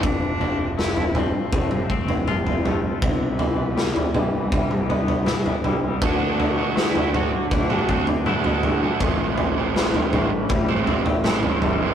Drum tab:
SD |----o-----------|----o-------o---|----o-----------|----o-------o---|
T2 |------o--o--o-o-|------o--o--o-o-|------o--o--o-o-|------o--o--o-o-|
FT |o-o--oo-o--o-oo-|o-o--oo-o-oo-oo-|o-o--oo-o--o-oo-|o-o--oo-o-oo-oo-|
BD |o-------o-o-----|o-------o-------|o-------o-o-----|o-------o-------|